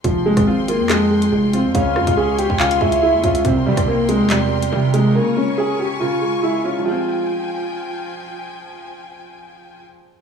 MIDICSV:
0, 0, Header, 1, 7, 480
1, 0, Start_track
1, 0, Key_signature, -4, "minor"
1, 0, Tempo, 425532
1, 50, Time_signature, 4, 2, 24, 8
1, 11519, End_track
2, 0, Start_track
2, 0, Title_t, "String section"
2, 0, Program_c, 0, 48
2, 50, Note_on_c, 0, 65, 81
2, 50, Note_on_c, 0, 68, 74
2, 50, Note_on_c, 0, 79, 73
2, 50, Note_on_c, 0, 84, 92
2, 1951, Note_off_c, 0, 68, 0
2, 1951, Note_off_c, 0, 79, 0
2, 1951, Note_off_c, 0, 84, 0
2, 1971, Note_on_c, 0, 73, 75
2, 1971, Note_on_c, 0, 80, 74
2, 1971, Note_on_c, 0, 84, 90
2, 3871, Note_off_c, 0, 73, 0
2, 3871, Note_off_c, 0, 80, 0
2, 3871, Note_off_c, 0, 84, 0
2, 3890, Note_on_c, 0, 70, 72
2, 3890, Note_on_c, 0, 79, 76
2, 3890, Note_on_c, 0, 84, 87
2, 5791, Note_off_c, 0, 79, 0
2, 5791, Note_off_c, 0, 84, 0
2, 5811, Note_on_c, 0, 80, 75
2, 5811, Note_on_c, 0, 85, 90
2, 7685, Note_off_c, 0, 65, 0
2, 7691, Note_off_c, 0, 70, 0
2, 7711, Note_off_c, 0, 80, 0
2, 7711, Note_off_c, 0, 85, 0
2, 7729, Note_on_c, 0, 65, 74
2, 7730, Note_on_c, 0, 53, 80
2, 7730, Note_on_c, 0, 79, 89
2, 7730, Note_on_c, 0, 80, 71
2, 11078, Note_off_c, 0, 53, 0
2, 11078, Note_off_c, 0, 65, 0
2, 11078, Note_off_c, 0, 79, 0
2, 11078, Note_off_c, 0, 80, 0
2, 11519, End_track
3, 0, Start_track
3, 0, Title_t, "Soft synth lead"
3, 0, Program_c, 1, 80
3, 1969, Note_on_c, 1, 77, 113
3, 2646, Note_off_c, 1, 77, 0
3, 2688, Note_on_c, 1, 79, 83
3, 2917, Note_off_c, 1, 79, 0
3, 2928, Note_on_c, 1, 77, 99
3, 3157, Note_off_c, 1, 77, 0
3, 3176, Note_on_c, 1, 76, 81
3, 3850, Note_off_c, 1, 76, 0
3, 11519, End_track
4, 0, Start_track
4, 0, Title_t, "Grand piano"
4, 0, Program_c, 2, 0
4, 50, Note_on_c, 2, 53, 86
4, 247, Note_off_c, 2, 53, 0
4, 290, Note_on_c, 2, 56, 88
4, 487, Note_off_c, 2, 56, 0
4, 530, Note_on_c, 2, 60, 74
4, 726, Note_off_c, 2, 60, 0
4, 772, Note_on_c, 2, 58, 85
4, 968, Note_off_c, 2, 58, 0
4, 1011, Note_on_c, 2, 56, 89
4, 1687, Note_off_c, 2, 56, 0
4, 1730, Note_on_c, 2, 60, 88
4, 1926, Note_off_c, 2, 60, 0
4, 1969, Note_on_c, 2, 61, 85
4, 2166, Note_off_c, 2, 61, 0
4, 2210, Note_on_c, 2, 65, 76
4, 2406, Note_off_c, 2, 65, 0
4, 2449, Note_on_c, 2, 68, 92
4, 2646, Note_off_c, 2, 68, 0
4, 2690, Note_on_c, 2, 67, 81
4, 2887, Note_off_c, 2, 67, 0
4, 2930, Note_on_c, 2, 65, 87
4, 3381, Note_off_c, 2, 65, 0
4, 3410, Note_on_c, 2, 64, 89
4, 3607, Note_off_c, 2, 64, 0
4, 3650, Note_on_c, 2, 65, 86
4, 3846, Note_off_c, 2, 65, 0
4, 3891, Note_on_c, 2, 60, 81
4, 4087, Note_off_c, 2, 60, 0
4, 4130, Note_on_c, 2, 55, 91
4, 4327, Note_off_c, 2, 55, 0
4, 4367, Note_on_c, 2, 58, 86
4, 4565, Note_off_c, 2, 58, 0
4, 4610, Note_on_c, 2, 56, 89
4, 4806, Note_off_c, 2, 56, 0
4, 4848, Note_on_c, 2, 55, 92
4, 5526, Note_off_c, 2, 55, 0
4, 5568, Note_on_c, 2, 56, 86
4, 5765, Note_off_c, 2, 56, 0
4, 5811, Note_on_c, 2, 58, 85
4, 6007, Note_off_c, 2, 58, 0
4, 6050, Note_on_c, 2, 61, 78
4, 6247, Note_off_c, 2, 61, 0
4, 6291, Note_on_c, 2, 68, 100
4, 6487, Note_off_c, 2, 68, 0
4, 6532, Note_on_c, 2, 67, 77
4, 6728, Note_off_c, 2, 67, 0
4, 6771, Note_on_c, 2, 65, 89
4, 7222, Note_off_c, 2, 65, 0
4, 7251, Note_on_c, 2, 64, 89
4, 7447, Note_off_c, 2, 64, 0
4, 7494, Note_on_c, 2, 65, 80
4, 7689, Note_off_c, 2, 65, 0
4, 7732, Note_on_c, 2, 65, 86
4, 9126, Note_off_c, 2, 65, 0
4, 11519, End_track
5, 0, Start_track
5, 0, Title_t, "Felt piano"
5, 0, Program_c, 3, 0
5, 50, Note_on_c, 3, 53, 92
5, 287, Control_c, 3, 64, 127
5, 289, Note_on_c, 3, 56, 87
5, 530, Note_on_c, 3, 65, 100
5, 752, Note_off_c, 3, 65, 0
5, 769, Note_on_c, 3, 65, 88
5, 993, Note_off_c, 3, 53, 0
5, 1010, Note_on_c, 3, 53, 93
5, 1233, Note_off_c, 3, 56, 0
5, 1250, Note_on_c, 3, 56, 85
5, 1471, Note_off_c, 3, 56, 0
5, 1488, Note_on_c, 3, 56, 85
5, 1713, Note_off_c, 3, 65, 0
5, 1729, Note_on_c, 3, 65, 89
5, 1969, Note_off_c, 3, 56, 0
5, 1970, Note_off_c, 3, 53, 0
5, 1970, Note_off_c, 3, 65, 0
5, 1970, Note_on_c, 3, 49, 108
5, 1982, Control_c, 3, 64, 0
5, 2189, Control_c, 3, 64, 127
5, 2211, Note_on_c, 3, 56, 88
5, 2452, Note_on_c, 3, 61, 94
5, 2673, Note_off_c, 3, 61, 0
5, 2690, Note_on_c, 3, 61, 89
5, 2913, Note_off_c, 3, 49, 0
5, 2930, Note_on_c, 3, 49, 92
5, 3155, Note_off_c, 3, 56, 0
5, 3172, Note_on_c, 3, 56, 88
5, 3394, Note_off_c, 3, 56, 0
5, 3411, Note_on_c, 3, 56, 95
5, 3631, Note_off_c, 3, 61, 0
5, 3648, Note_on_c, 3, 61, 88
5, 3889, Note_off_c, 3, 61, 0
5, 3890, Note_off_c, 3, 49, 0
5, 3890, Note_off_c, 3, 56, 0
5, 3890, Note_on_c, 3, 48, 102
5, 3902, Control_c, 3, 64, 0
5, 4112, Control_c, 3, 64, 127
5, 4132, Note_on_c, 3, 55, 86
5, 4370, Note_on_c, 3, 60, 97
5, 4592, Note_off_c, 3, 60, 0
5, 4609, Note_on_c, 3, 60, 94
5, 4833, Note_off_c, 3, 48, 0
5, 4850, Note_on_c, 3, 48, 96
5, 5073, Note_off_c, 3, 55, 0
5, 5090, Note_on_c, 3, 55, 82
5, 5312, Note_off_c, 3, 55, 0
5, 5329, Note_on_c, 3, 55, 92
5, 5554, Note_off_c, 3, 60, 0
5, 5571, Note_on_c, 3, 60, 84
5, 5810, Note_off_c, 3, 48, 0
5, 5810, Note_off_c, 3, 55, 0
5, 5810, Note_off_c, 3, 60, 0
5, 5810, Note_on_c, 3, 49, 102
5, 5825, Control_c, 3, 64, 0
5, 6009, Control_c, 3, 64, 127
5, 6051, Note_on_c, 3, 56, 78
5, 6291, Note_on_c, 3, 61, 92
5, 6515, Note_off_c, 3, 61, 0
5, 6532, Note_on_c, 3, 61, 84
5, 6754, Note_off_c, 3, 49, 0
5, 6771, Note_on_c, 3, 49, 87
5, 6994, Note_off_c, 3, 56, 0
5, 7011, Note_on_c, 3, 56, 74
5, 7234, Note_off_c, 3, 56, 0
5, 7251, Note_on_c, 3, 56, 93
5, 7473, Note_off_c, 3, 61, 0
5, 7490, Note_on_c, 3, 61, 90
5, 7663, Note_on_c, 3, 53, 87
5, 7708, Note_on_c, 3, 55, 79
5, 7730, Note_off_c, 3, 56, 0
5, 7730, Note_off_c, 3, 61, 0
5, 7731, Note_off_c, 3, 49, 0
5, 7746, Control_c, 3, 64, 0
5, 7753, Note_on_c, 3, 56, 79
5, 7798, Note_on_c, 3, 60, 100
5, 7934, Control_c, 3, 64, 127
5, 11011, Note_off_c, 3, 53, 0
5, 11056, Note_off_c, 3, 55, 0
5, 11102, Note_off_c, 3, 56, 0
5, 11147, Note_off_c, 3, 60, 0
5, 11519, End_track
6, 0, Start_track
6, 0, Title_t, "808-style bass"
6, 0, Program_c, 4, 38
6, 50, Note_on_c, 4, 29, 116
6, 402, Note_off_c, 4, 29, 0
6, 417, Note_on_c, 4, 32, 109
6, 897, Note_on_c, 4, 41, 101
6, 914, Note_off_c, 4, 32, 0
6, 1460, Note_off_c, 4, 41, 0
6, 1491, Note_on_c, 4, 29, 106
6, 1857, Note_on_c, 4, 41, 99
6, 1874, Note_off_c, 4, 29, 0
6, 1964, Note_off_c, 4, 41, 0
6, 1970, Note_on_c, 4, 37, 106
6, 2210, Note_on_c, 4, 41, 102
6, 2227, Note_off_c, 4, 37, 0
6, 2331, Note_off_c, 4, 41, 0
6, 2337, Note_on_c, 4, 37, 100
6, 2798, Note_off_c, 4, 37, 0
6, 2818, Note_on_c, 4, 37, 108
6, 3156, Note_off_c, 4, 37, 0
6, 3170, Note_on_c, 4, 37, 109
6, 3537, Note_on_c, 4, 40, 101
6, 3554, Note_off_c, 4, 37, 0
6, 3644, Note_off_c, 4, 40, 0
6, 3651, Note_on_c, 4, 37, 100
6, 3881, Note_off_c, 4, 37, 0
6, 3890, Note_on_c, 4, 36, 108
6, 4130, Note_on_c, 4, 52, 101
6, 4147, Note_off_c, 4, 36, 0
6, 4251, Note_off_c, 4, 52, 0
6, 4256, Note_on_c, 4, 36, 112
6, 4737, Note_on_c, 4, 40, 103
6, 4754, Note_off_c, 4, 36, 0
6, 5300, Note_off_c, 4, 40, 0
6, 5330, Note_on_c, 4, 48, 105
6, 5791, Note_off_c, 4, 48, 0
6, 11519, End_track
7, 0, Start_track
7, 0, Title_t, "Drums"
7, 49, Note_on_c, 9, 42, 88
7, 50, Note_on_c, 9, 36, 110
7, 162, Note_off_c, 9, 42, 0
7, 163, Note_off_c, 9, 36, 0
7, 416, Note_on_c, 9, 37, 69
7, 416, Note_on_c, 9, 42, 81
7, 417, Note_on_c, 9, 36, 106
7, 529, Note_off_c, 9, 36, 0
7, 529, Note_off_c, 9, 37, 0
7, 529, Note_off_c, 9, 42, 0
7, 771, Note_on_c, 9, 42, 83
7, 884, Note_off_c, 9, 42, 0
7, 1009, Note_on_c, 9, 39, 120
7, 1011, Note_on_c, 9, 42, 76
7, 1122, Note_off_c, 9, 39, 0
7, 1124, Note_off_c, 9, 42, 0
7, 1377, Note_on_c, 9, 42, 89
7, 1489, Note_off_c, 9, 42, 0
7, 1730, Note_on_c, 9, 42, 75
7, 1843, Note_off_c, 9, 42, 0
7, 1971, Note_on_c, 9, 36, 112
7, 1971, Note_on_c, 9, 42, 89
7, 2083, Note_off_c, 9, 36, 0
7, 2083, Note_off_c, 9, 42, 0
7, 2211, Note_on_c, 9, 37, 93
7, 2323, Note_off_c, 9, 37, 0
7, 2337, Note_on_c, 9, 36, 105
7, 2337, Note_on_c, 9, 42, 82
7, 2449, Note_off_c, 9, 42, 0
7, 2450, Note_off_c, 9, 36, 0
7, 2691, Note_on_c, 9, 42, 86
7, 2804, Note_off_c, 9, 42, 0
7, 2818, Note_on_c, 9, 36, 91
7, 2928, Note_on_c, 9, 39, 121
7, 2929, Note_on_c, 9, 42, 46
7, 2930, Note_off_c, 9, 36, 0
7, 3041, Note_off_c, 9, 39, 0
7, 3041, Note_off_c, 9, 42, 0
7, 3057, Note_on_c, 9, 42, 82
7, 3169, Note_off_c, 9, 42, 0
7, 3170, Note_on_c, 9, 36, 87
7, 3282, Note_off_c, 9, 36, 0
7, 3296, Note_on_c, 9, 42, 89
7, 3409, Note_off_c, 9, 42, 0
7, 3650, Note_on_c, 9, 42, 75
7, 3651, Note_on_c, 9, 36, 107
7, 3763, Note_off_c, 9, 36, 0
7, 3763, Note_off_c, 9, 42, 0
7, 3777, Note_on_c, 9, 42, 76
7, 3889, Note_off_c, 9, 42, 0
7, 3889, Note_on_c, 9, 42, 89
7, 3890, Note_on_c, 9, 36, 105
7, 4001, Note_off_c, 9, 42, 0
7, 4002, Note_off_c, 9, 36, 0
7, 4256, Note_on_c, 9, 37, 71
7, 4256, Note_on_c, 9, 42, 83
7, 4257, Note_on_c, 9, 36, 103
7, 4369, Note_off_c, 9, 36, 0
7, 4369, Note_off_c, 9, 37, 0
7, 4369, Note_off_c, 9, 42, 0
7, 4611, Note_on_c, 9, 42, 82
7, 4723, Note_off_c, 9, 42, 0
7, 4849, Note_on_c, 9, 39, 118
7, 4851, Note_on_c, 9, 42, 74
7, 4962, Note_off_c, 9, 39, 0
7, 4964, Note_off_c, 9, 42, 0
7, 5217, Note_on_c, 9, 42, 92
7, 5329, Note_off_c, 9, 42, 0
7, 5570, Note_on_c, 9, 42, 75
7, 5683, Note_off_c, 9, 42, 0
7, 11519, End_track
0, 0, End_of_file